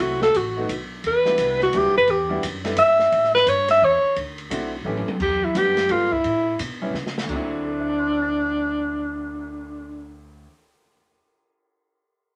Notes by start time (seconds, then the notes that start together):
0.00 C2 F#3 A3 C4 E4 F#4, kick, ride
0.22 A4, snare
0.34 A1 F#4, kick, hi-hat pedal, ride
0.57 F#3 A3 B3 D#4 F#4
0.69 B1, kick, hi-hat pedal, ride
1.04 E2 B4, kick, ride
1.25 G3 B3 D4 E4 F#4, snare
1.38 C2, kick, hi-hat pedal, ride
1.61 F#4, snare
1.73 D2 G3 B3 D4 E4 F#4, kick, ride
1.77 G4
1.86 B1
1.97 G1 B4
2.08 E2 G4, kick, ride
2.29 G3 B3 D4 E4 F#4
2.43 F#2, kick, hi-hat pedal, ride
2.64 G3 B3 D4 E4 A4, snare, ride
2.77 G2 E5, kick, hi-hat pedal, ride
2.99 snare
3.12 A2, kick, ride
3.24 snare
3.35 B4, snare
3.46 G2 C#5, kick, hi-hat pedal, ride
3.68 E5, snare, ride
3.82 E2 C#5, kick
4.03 muted upright bass stroke
4.16 D2, kick, ride
4.38 ride
4.50 B1 A3 C4 D4 E4 F#4, kick, hi-hat pedal, ride
4.85 A1 A3 B3 C#4 E4 G4, high tom
4.97 high tom
5.07 muted upright bass stroke, high tom
5.20 E2 G4, kick, crash
5.44 E4
5.55 F#2 G3 B3 D4 F#4 G4, kick, hi-hat pedal, ride
5.77 snare, ride
5.89 G2 G3 B3 D4 F4 A4, kick, ride
6.12 E4, kick
6.24 A2, kick, ride
6.59 B2, kick, hi-hat pedal, ride
6.82 G3 B3 C#4 E4
6.93 C#3, snare
7.07 snare
7.18 snare
7.24 D2 D3
7.29 D2 F#3 C4 D4, kick, crash
7.35 E4
7.51 cymbal swell
7.65 A4
7.72 C5
7.80 E5
7.89 A5
7.99 C6
8.10 E6
8.22 A6